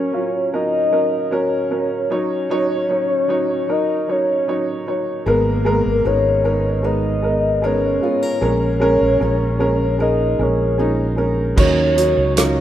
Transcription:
Already playing: F#3 C#4 A#4 C#5
0.12 F#3 C#4 F4
0.52 F#3 C#4 A#4 D#5
0.91 F#3 C#4 A#4
1.25 D#5
1.31 F#3 C#4 A#4 C#5
1.70 F#3 C#4 A#4
2.10 F#3 D#4 C#5
2.50 F#3 D#4 C#5
2.89 F#3 D#4 C#5
3.28 F#3 D#4 C#5
3.68 F#3 D#4 A#4 D#5
4.08 F#3 D#4 C#5
4.47 F#3 D#4 C#5
4.87 F#3 D#4 C#5
5.26 G#1 G#2 G#3 B3 A#4
5.65 G#3 B3 A#4
5.85 G#1
6.04 G#1 G#3 B3 D#4 A#4 C#5
6.44 G#3 B3 D#4 A#4
6.83 G#3 B3 A#4 D#5
7.22 G#3 B3 A#4
7.62 G#3 B3 D#4 A#4 C#5
8.01 G#3 B3 F4 G#4
8.22 A#4
8.41 A#1 A#2 G#3 C#4 A#4
8.45 C#5
8.80 G#3 C#4 A#4
9.01 A#1
9.20 A#1 G#3 C#4 F4 A#4
9.59 G#3 C#4 F4 A#4
9.99 G#3 C#4 A#4 D#5
10.39 A#1 G#3 C#4 A#4 C#5
10.78 G#3 C#4 D#4 F4 A#4
11.16 G#3 C#4 A#4
11.56 D#2 D#3 F#3 D#4 C#5, kick, crash
11.96 F#3 C#4 D#4 F#4, closed hi-hat
12.17 C#2
12.36 F#3 D#4 F4 A#4 C#5, cross-stick, closed hi-hat

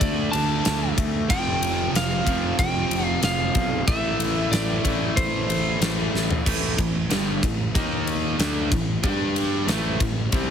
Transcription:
Already playing: D3 A3 D4
0.00 D2 D5, kick, ride
0.32 D2 D3 A3 D4 A5, ride
0.65 D2, snare, ride
0.98 D2, kick, ride
1.30 F1 F2 C3 F3 G5, kick, ride
1.61 F1, ride
1.94 F1 F5, snare, ride
2.25 F1 F2 C3 F3, kick, ride
2.59 F1 G5, kick, ride
2.90 F1, ride
3.05 F5
3.22 F1 F2 C3 F3 F5, snare, ride
3.55 B1, kick, ride
3.87 A1 A2 E3 A3 E5, kick, ride
4.19 A1, ride
4.51 A1 D5, snare, ride
4.84 A1 A2 E3 A3, kick, ride
5.16 A1 C5, kick, ride
5.49 A1, ride
5.80 A1 A2 E3 A3, snare, ride
6.14 A1, snare
6.31 floor tom
6.46 A1 A2 E3 A3, kick, crash
6.77 A1 A2 E3, kick, ride
7.10 G1 G2 D3 G3, snare, ride
7.43 A1 A2 E3, kick, ride
7.75 D#2 D#3 A#3 D#4, kick, ride
8.07 ride
8.39 D2 D3 A3 D4, snare, ride
8.71 A1 A2 E3, kick, ride
9.03 G2 G3 D4 G4, kick, ride
9.36 ride
9.67 A1 A2 E3 A3, snare, ride
10.00 A1 A2 E3, kick, ride
10.32 C2 C3 G3 C4, kick, ride

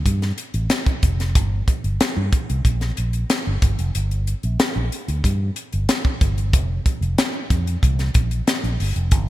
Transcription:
0.06 G2, kick, closed hi-hat
0.22 snare, closed hi-hat
0.38 closed hi-hat
0.54 A1, closed hi-hat
0.70 snare, closed hi-hat
0.86 kick, closed hi-hat
1.03 F1, kick, closed hi-hat
1.20 snare, closed hi-hat
1.35 G1, kick, closed hi-hat
1.68 kick, closed hi-hat
1.84 G1, closed hi-hat
2.00 muted fingered electric bass stroke, snare, closed hi-hat
2.17 G2
2.33 kick, closed hi-hat
2.50 C2, closed hi-hat
2.65 A#1, kick, closed hi-hat
2.81 snare, closed hi-hat
2.97 A#1, closed hi-hat
3.13 closed hi-hat
3.30 snare, closed hi-hat
3.47 G1
3.62 G1, kick, closed hi-hat
3.79 F1, closed hi-hat
3.95 G1, closed hi-hat
4.11 closed hi-hat
4.27 closed hi-hat
4.43 A#1, closed hi-hat
4.60 snare, closed hi-hat
4.76 A#1
4.92 closed hi-hat
5.08 D2, closed hi-hat
5.24 G2, kick, closed hi-hat
5.56 closed hi-hat
5.73 G1, closed hi-hat
5.89 snare, closed hi-hat
6.05 kick
6.21 G1, kick, closed hi-hat
6.38 closed hi-hat
6.53 F1, kick, closed hi-hat
6.86 kick, closed hi-hat
7.01 F1, closed hi-hat
7.18 snare, closed hi-hat
7.50 F2, kick, closed hi-hat
7.67 closed hi-hat
7.83 C2, kick, closed hi-hat
7.99 snare, closed hi-hat
8.14 A#1, kick, closed hi-hat
8.31 closed hi-hat
8.47 snare, closed hi-hat
8.64 A#1, closed hi-hat
8.80 G1, open hi-hat
8.96 F1, closed hi-hat
9.11 G1, kick, closed hi-hat

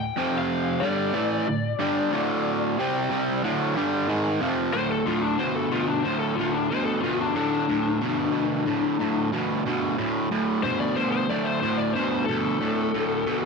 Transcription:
Already playing: A2
0.00 G5
0.17 F2 C3 F3
0.38 F5
0.80 G2 D3 G3 D5
1.13 A2 E3 A3
1.47 D2 A2
1.79 G2 D3 G3
2.12 D2 A2 D3
2.79 C3 G3 C4
3.10 C3 G3 C4
3.43 D2 A2 D3
3.76 G2 D3 G3
4.08 G#2 D#3 G#3
4.41 F2 C3 F3
4.73 D2 A2 C5
4.92 A4
5.06 D2 A2 F4
5.21 D4
5.38 D2 B2 C5
5.55 A4
5.71 D2 B2 F4
5.88 D4
6.03 D2 A2 C5
6.20 A4
6.36 D2 A2 F4
6.52 D4
6.70 D2 B2 C5
6.85 A4
7.01 D2 B2 F4
7.21 D4
7.34 D2 A2 D4
7.68 D2 A2
8.01 D2 B2
8.32 D2 B2
8.65 D2 A2
8.99 D2 A2
9.32 D2 B2
9.66 D2 B2
9.98 D2 A2
10.32 D2 A2
10.63 D2 B2 C5
10.80 D5
10.96 D2 B2 C5
11.12 C5
11.30 D2 A2 D5
11.46 C5
11.60 D2 A2 C5
11.78 D5
11.94 D2 B2 C5
12.26 D2 B2 A4
12.60 D2 A2
12.94 D2 A2
13.26 D2 B2

